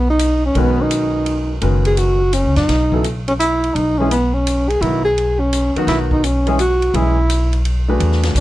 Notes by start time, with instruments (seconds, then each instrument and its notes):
Already playing: upright bass B1
0.10 tenor saxophone D#4
0.19 hi-hat pedal, ride
0.46 tenor saxophone C#4
0.55 upright bass B1, grand piano D#3 G#3 C#4 F#4 B4, ride
0.59 tenor saxophone B3
0.82 tenor saxophone D#4
0.91 hi-hat pedal, ride
1.26 ride
1.61 upright bass F#1, grand piano D#3 G#3 C#4 F#4 B4, ride
1.85 tenor saxophone G#4, ride
1.97 tenor saxophone F#4, hi-hat pedal, ride
2.33 tenor saxophone C#4, hi-hat pedal, ride
2.44 upright bass C#2
2.56 upright bass F#2, tenor saxophone D#4, snare, ride
2.68 upright bass B1, snare, ride
2.92 grand piano C#3 F#3 B3 E4 A4, kick
3.04 hi-hat pedal, ride
3.28 tenor saxophone C#4, ride
3.39 tenor saxophone E4, hi-hat pedal, ride
3.64 ride
3.75 upright bass B1, tenor saxophone D#4, ride
3.98 grand piano E3 G#3 C#4 E4 G#4, tenor saxophone C#4
4.11 tenor saxophone B3, hi-hat pedal, ride
4.33 tenor saxophone C#4
4.47 hi-hat pedal, ride
4.69 tenor saxophone G#4, ride
4.81 upright bass B1, grand piano D#3 F#3 B3 D#4 F#4, tenor saxophone E4, ride
5.04 tenor saxophone G#4
5.18 ride
5.40 tenor saxophone C#4
5.53 hi-hat pedal, ride
5.75 grand piano D#3 F#3 B3 D#4 F#4, muted upright bass stroke, ride
5.87 upright bass B1, tenor saxophone E4, snare, ride
6.11 tenor saxophone D#4, kick
6.24 tenor saxophone C#4, hi-hat pedal, ride
6.46 grand piano E3 G#3 C#4 E4 G#4, ride
6.59 tenor saxophone F#4, hi-hat pedal, ride
6.82 ride
6.94 upright bass B1, grand piano E3 G#3 C#4 E4 G#4, tenor saxophone E4, ride
7.30 hi-hat pedal, ride
7.53 ride
7.65 ride
7.88 grand piano A3 D4 F#4 G#4 B4
8.00 upright bass E2, ride
8.12 snare
8.23 snare, ride
8.35 upright bass D2, hi-hat pedal, ride